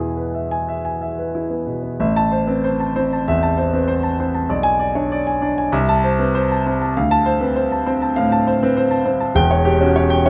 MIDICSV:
0, 0, Header, 1, 2, 480
1, 0, Start_track
1, 0, Key_signature, 0, "minor"
1, 0, Tempo, 668151
1, 1443, Time_signature, 4, 2, 24, 8
1, 1444, Tempo, 631579
1, 2404, Tempo, 610998
1, 6244, Tempo, 597610
1, 7959, End_track
2, 0, Start_track
2, 0, Title_t, "Grand piano"
2, 0, Program_c, 0, 0
2, 0, Control_c, 0, 64, 127
2, 0, Note_on_c, 0, 40, 53
2, 0, Note_on_c, 0, 47, 51
2, 0, Note_on_c, 0, 59, 47
2, 0, Note_on_c, 0, 64, 52
2, 0, Note_on_c, 0, 68, 54
2, 76, Note_off_c, 0, 64, 0
2, 123, Note_on_c, 0, 71, 50
2, 197, Note_off_c, 0, 68, 0
2, 248, Note_on_c, 0, 76, 49
2, 320, Note_off_c, 0, 71, 0
2, 369, Note_on_c, 0, 80, 70
2, 443, Note_off_c, 0, 76, 0
2, 493, Note_on_c, 0, 76, 56
2, 563, Note_off_c, 0, 80, 0
2, 610, Note_on_c, 0, 80, 58
2, 684, Note_off_c, 0, 76, 0
2, 730, Note_on_c, 0, 76, 46
2, 802, Note_off_c, 0, 80, 0
2, 853, Note_on_c, 0, 71, 52
2, 921, Note_off_c, 0, 76, 0
2, 968, Note_on_c, 0, 64, 50
2, 1043, Note_off_c, 0, 71, 0
2, 1079, Note_off_c, 0, 59, 0
2, 1079, Note_on_c, 0, 59, 47
2, 1161, Note_off_c, 0, 64, 0
2, 1195, Note_off_c, 0, 47, 0
2, 1195, Note_on_c, 0, 47, 41
2, 1276, Note_off_c, 0, 59, 0
2, 1315, Note_on_c, 0, 59, 43
2, 1391, Note_off_c, 0, 47, 0
2, 1413, Note_off_c, 0, 40, 0
2, 1435, Note_on_c, 0, 33, 79
2, 1437, Note_off_c, 0, 59, 0
2, 1437, Note_on_c, 0, 76, 66
2, 1459, Control_c, 0, 64, 0
2, 1561, Note_on_c, 0, 81, 98
2, 1572, Control_c, 0, 64, 127
2, 1632, Note_off_c, 0, 76, 0
2, 1677, Note_on_c, 0, 72, 64
2, 1755, Note_off_c, 0, 81, 0
2, 1792, Note_on_c, 0, 71, 57
2, 1796, Note_on_c, 0, 60, 65
2, 1874, Note_off_c, 0, 72, 0
2, 1919, Note_off_c, 0, 71, 0
2, 1923, Note_on_c, 0, 72, 70
2, 1993, Note_off_c, 0, 60, 0
2, 2046, Note_on_c, 0, 81, 66
2, 2117, Note_off_c, 0, 72, 0
2, 2164, Note_on_c, 0, 72, 68
2, 2166, Note_on_c, 0, 60, 68
2, 2237, Note_off_c, 0, 81, 0
2, 2294, Note_on_c, 0, 81, 65
2, 2355, Note_off_c, 0, 72, 0
2, 2356, Note_off_c, 0, 60, 0
2, 2369, Note_off_c, 0, 33, 0
2, 2409, Note_on_c, 0, 40, 65
2, 2409, Note_on_c, 0, 76, 81
2, 2480, Note_off_c, 0, 81, 0
2, 2525, Note_on_c, 0, 81, 74
2, 2599, Note_off_c, 0, 40, 0
2, 2600, Note_off_c, 0, 76, 0
2, 2640, Note_on_c, 0, 72, 63
2, 2717, Note_off_c, 0, 81, 0
2, 2766, Note_on_c, 0, 60, 63
2, 2766, Note_on_c, 0, 71, 62
2, 2835, Note_off_c, 0, 72, 0
2, 2879, Note_on_c, 0, 72, 76
2, 2885, Note_off_c, 0, 71, 0
2, 2957, Note_off_c, 0, 60, 0
2, 3001, Note_on_c, 0, 81, 66
2, 3073, Note_off_c, 0, 72, 0
2, 3130, Note_on_c, 0, 60, 51
2, 3132, Note_on_c, 0, 72, 62
2, 3194, Note_off_c, 0, 81, 0
2, 3246, Note_on_c, 0, 81, 61
2, 3319, Note_off_c, 0, 60, 0
2, 3320, Note_off_c, 0, 72, 0
2, 3360, Note_on_c, 0, 35, 76
2, 3365, Note_off_c, 0, 81, 0
2, 3367, Note_on_c, 0, 74, 66
2, 3379, Control_c, 0, 64, 0
2, 3472, Note_on_c, 0, 80, 103
2, 3487, Control_c, 0, 64, 127
2, 3558, Note_off_c, 0, 74, 0
2, 3600, Note_on_c, 0, 74, 67
2, 3671, Note_off_c, 0, 80, 0
2, 3721, Note_on_c, 0, 62, 65
2, 3724, Note_on_c, 0, 73, 62
2, 3795, Note_off_c, 0, 74, 0
2, 3845, Note_off_c, 0, 73, 0
2, 3853, Note_on_c, 0, 74, 73
2, 3916, Note_off_c, 0, 62, 0
2, 3972, Note_on_c, 0, 80, 72
2, 4043, Note_off_c, 0, 74, 0
2, 4087, Note_on_c, 0, 62, 67
2, 4090, Note_on_c, 0, 74, 67
2, 4163, Note_off_c, 0, 80, 0
2, 4216, Note_on_c, 0, 80, 72
2, 4280, Note_off_c, 0, 62, 0
2, 4282, Note_off_c, 0, 74, 0
2, 4298, Note_off_c, 0, 35, 0
2, 4329, Note_on_c, 0, 36, 89
2, 4331, Note_on_c, 0, 76, 74
2, 4332, Note_off_c, 0, 80, 0
2, 4342, Control_c, 0, 64, 0
2, 4458, Note_on_c, 0, 81, 99
2, 4492, Control_c, 0, 64, 127
2, 4522, Note_off_c, 0, 76, 0
2, 4577, Note_on_c, 0, 72, 64
2, 4646, Note_off_c, 0, 81, 0
2, 4694, Note_on_c, 0, 71, 65
2, 4697, Note_on_c, 0, 60, 69
2, 4765, Note_off_c, 0, 72, 0
2, 4811, Note_off_c, 0, 71, 0
2, 4819, Note_on_c, 0, 72, 79
2, 4885, Note_off_c, 0, 60, 0
2, 4949, Note_on_c, 0, 81, 69
2, 5006, Note_off_c, 0, 72, 0
2, 5066, Note_on_c, 0, 60, 59
2, 5068, Note_on_c, 0, 72, 64
2, 5130, Note_off_c, 0, 81, 0
2, 5188, Note_on_c, 0, 81, 68
2, 5248, Note_off_c, 0, 60, 0
2, 5249, Note_off_c, 0, 72, 0
2, 5258, Note_off_c, 0, 36, 0
2, 5297, Note_off_c, 0, 81, 0
2, 5300, Control_c, 0, 64, 0
2, 5307, Note_on_c, 0, 38, 78
2, 5308, Note_on_c, 0, 77, 71
2, 5420, Note_on_c, 0, 81, 106
2, 5432, Control_c, 0, 64, 127
2, 5488, Note_off_c, 0, 77, 0
2, 5534, Note_on_c, 0, 72, 75
2, 5604, Note_off_c, 0, 81, 0
2, 5651, Note_on_c, 0, 60, 64
2, 5651, Note_on_c, 0, 71, 68
2, 5721, Note_off_c, 0, 72, 0
2, 5768, Note_off_c, 0, 71, 0
2, 5771, Note_on_c, 0, 72, 68
2, 5840, Note_off_c, 0, 60, 0
2, 5896, Note_on_c, 0, 81, 70
2, 5960, Note_off_c, 0, 72, 0
2, 6010, Note_on_c, 0, 72, 75
2, 6013, Note_on_c, 0, 60, 71
2, 6083, Note_off_c, 0, 81, 0
2, 6132, Note_on_c, 0, 81, 72
2, 6199, Note_off_c, 0, 72, 0
2, 6200, Note_off_c, 0, 60, 0
2, 6226, Note_off_c, 0, 38, 0
2, 6245, Note_on_c, 0, 77, 79
2, 6252, Note_on_c, 0, 45, 76
2, 6320, Note_off_c, 0, 81, 0
2, 6372, Note_on_c, 0, 81, 85
2, 6437, Note_off_c, 0, 77, 0
2, 6440, Note_off_c, 0, 45, 0
2, 6494, Note_on_c, 0, 72, 71
2, 6560, Note_off_c, 0, 81, 0
2, 6619, Note_on_c, 0, 60, 76
2, 6619, Note_on_c, 0, 71, 68
2, 6680, Note_off_c, 0, 72, 0
2, 6731, Note_off_c, 0, 71, 0
2, 6731, Note_on_c, 0, 72, 78
2, 6803, Note_off_c, 0, 60, 0
2, 6844, Note_on_c, 0, 81, 74
2, 6919, Note_off_c, 0, 72, 0
2, 6961, Note_on_c, 0, 60, 60
2, 6962, Note_on_c, 0, 72, 65
2, 7035, Note_off_c, 0, 81, 0
2, 7082, Note_on_c, 0, 81, 72
2, 7153, Note_off_c, 0, 60, 0
2, 7154, Note_off_c, 0, 72, 0
2, 7197, Note_on_c, 0, 28, 85
2, 7201, Note_off_c, 0, 81, 0
2, 7202, Note_on_c, 0, 40, 82
2, 7204, Note_on_c, 0, 79, 100
2, 7216, Control_c, 0, 64, 0
2, 7323, Control_c, 0, 64, 127
2, 7326, Note_on_c, 0, 73, 77
2, 7394, Note_off_c, 0, 79, 0
2, 7441, Note_on_c, 0, 67, 79
2, 7515, Note_off_c, 0, 73, 0
2, 7567, Note_on_c, 0, 61, 78
2, 7570, Note_on_c, 0, 66, 73
2, 7633, Note_off_c, 0, 67, 0
2, 7686, Note_off_c, 0, 66, 0
2, 7687, Note_on_c, 0, 73, 83
2, 7757, Note_off_c, 0, 61, 0
2, 7803, Note_on_c, 0, 79, 82
2, 7878, Note_off_c, 0, 73, 0
2, 7926, Note_on_c, 0, 61, 82
2, 7928, Note_on_c, 0, 73, 84
2, 7959, Note_off_c, 0, 28, 0
2, 7959, Note_off_c, 0, 40, 0
2, 7959, Note_off_c, 0, 61, 0
2, 7959, Note_off_c, 0, 73, 0
2, 7959, Note_off_c, 0, 79, 0
2, 7959, End_track
0, 0, End_of_file